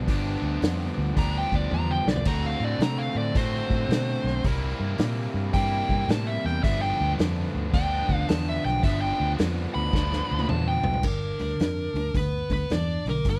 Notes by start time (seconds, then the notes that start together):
0.08 G1 G2 D3 F3 B3 D4 G4, kick, open hi-hat
0.42 D2
0.62 F2, snare, open hi-hat
0.98 D2
1.16 D2 G2 D3 F3 B3 D4 G4 A#5, kick, open hi-hat
1.38 G5
1.52 D2, kick
1.56 D5
1.71 E2 A#5, high tom
1.91 G5
2.06 B1 D5, snare
2.16 floor tom
2.25 D2 D3 A3 C4 F#4 A#5, kick, open hi-hat, crash
2.46 F5
2.60 A2
2.64 D5
2.79 C3 A#5, snare, open hi-hat
2.98 F5
3.15 A2 D5
3.35 A2 D3 A3 C4 F#4 C5, kick, open hi-hat
3.70 A2, kick
3.89 B2, snare, open hi-hat
4.24 B1, snare
4.44 C2 C3 G3 A#3 E4, kick, open hi-hat
4.80 G2
4.98 A#2, snare, open hi-hat
5.34 G2
5.53 G2 C3 G3 A#3 E4 G5, kick, open hi-hat
5.89 G2, kick
6.08 A2 A5, snare, open hi-hat
6.27 E5
6.45 E2 G5, snare
6.63 G1 G2 D3 F3 B3 D4 E5, kick, open hi-hat
6.82 G5
7.00 D2
7.19 F2, snare, open hi-hat
7.55 D2
7.73 D2 G2 D3 F3 B3 D4 G5, kick, open hi-hat
8.09 D2, kick
8.16 F5
8.29 E2 A5, snare, open hi-hat
8.49 E5
8.65 B1 G5, snare
8.83 G1 G2 D3 F3 B3 D4 E5, kick, open hi-hat
9.01 G5
9.20 D2
9.38 F2, snare, open hi-hat
9.74 D2 B5
9.93 D2 G2 D3 F3 B3 D4, kick, snare
10.13 snare
10.31 D2
10.39 high tom
10.49 E2 A5, mid tom
10.68 G5
10.84 B1, floor tom
10.94 floor tom
11.03 G1 G2 D3 A#4, kick, crash
11.07 D4
11.39 D2 G2 D3, open hi-hat
11.60 F2 G2 D3, snare, open hi-hat
11.94 D2 G2 D3, open hi-hat
12.14 D2 G2 D3 B4, kick, open hi-hat
12.19 B3
12.50 D2 G2 D3 B4, kick, open hi-hat
12.55 B3
12.70 E2 G2 E3 D5, snare, open hi-hat
12.75 D4
13.05 B1 G2 D3, snare, open hi-hat
13.09 A#3 A#4
13.25 G1 G2 D3, kick, open hi-hat
13.29 B3 B4